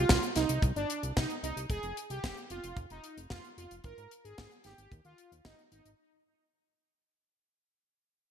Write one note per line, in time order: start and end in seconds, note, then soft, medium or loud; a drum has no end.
0.00 0.22 F4 medium
0.09 0.19 C2 medium
0.09 kick loud
0.09 snare loud
0.09 closed hi-hat medium
0.23 closed hi-hat soft
0.36 0.46 C2 medium
0.36 0.63 D#4 medium
0.36 snare soft
0.36 closed hi-hat medium
0.49 0.59 C2 medium
0.49 closed hi-hat medium
0.62 0.72 C2 loud
0.62 kick loud
0.62 closed hi-hat medium
0.76 0.86 G1 medium
0.76 1.03 D4 medium
0.76 closed hi-hat soft
0.90 closed hi-hat medium
1.03 1.13 C2 medium
1.03 closed hi-hat medium
1.16 1.26 C2 loud
1.16 1.34 D#4 medium
1.16 kick loud
1.16 snare loud
1.16 closed hi-hat medium
1.30 closed hi-hat soft
1.43 1.53 C2 medium
1.43 1.61 D#4 medium
1.43 closed hi-hat medium
1.57 1.66 C2 medium
1.57 closed hi-hat medium
1.70 1.79 F1 loud
1.70 1.96 G#4 loud
1.70 kick loud
1.70 closed hi-hat medium
1.83 1.93 F1 medium
1.83 closed hi-hat soft
1.97 closed hi-hat loud
2.10 2.20 C2 medium
2.10 2.37 G4 medium
2.10 closed hi-hat medium
2.24 2.33 F1 medium
2.24 kick loud
2.24 snare loud
2.24 closed hi-hat medium
2.37 closed hi-hat soft
2.50 2.60 F1 medium
2.50 2.77 F4 medium
2.50 closed hi-hat medium
2.64 2.73 F1 medium
2.64 closed hi-hat medium
2.77 2.86 F1 loud
2.77 kick loud
2.77 closed hi-hat medium
2.90 3.00 F1 medium
2.90 3.17 D#4 medium
2.90 closed hi-hat soft
3.04 closed hi-hat medium
3.17 3.27 F1 medium
3.17 closed hi-hat medium
3.30 3.40 F1 loud
3.30 3.48 F4 medium
3.30 kick loud
3.30 snare loud
3.30 closed hi-hat medium
3.45 closed hi-hat soft
3.58 3.67 F1 medium
3.58 3.75 F4 medium
3.58 closed hi-hat medium
3.71 3.81 F1 medium
3.71 closed hi-hat medium
3.84 3.94 G#1 loud
3.84 4.11 A#4 medium
3.84 kick loud
3.84 closed hi-hat medium
3.98 4.07 G#2 medium
3.98 closed hi-hat soft
4.11 closed hi-hat loud
4.24 4.34 G#1 medium
4.24 4.51 G#4 loud
4.24 closed hi-hat medium
4.38 4.48 G#1 medium
4.38 kick loud
4.38 snare loud
4.38 closed hi-hat medium
4.51 closed hi-hat soft
4.64 4.74 G#1 medium
4.64 4.91 G4 medium
4.64 snare soft
4.64 closed hi-hat medium
4.78 4.88 G#1 medium
4.78 closed hi-hat medium
4.92 5.01 D#2 loud
4.92 kick loud
4.92 closed hi-hat medium
5.05 5.14 D#2 medium
5.05 5.31 F4 medium
5.05 closed hi-hat soft
5.18 closed hi-hat loud
5.32 5.41 D#2 medium
5.32 closed hi-hat medium
5.45 5.55 G#1 loud
5.45 5.63 D#4 medium
5.45 kick medium
5.45 snare loud
5.45 closed hi-hat medium
5.59 closed hi-hat soft
5.72 5.81 G#1 medium
5.72 5.89 D#4 medium
5.72 closed hi-hat loud
5.85 5.95 G#1 medium
5.85 closed hi-hat medium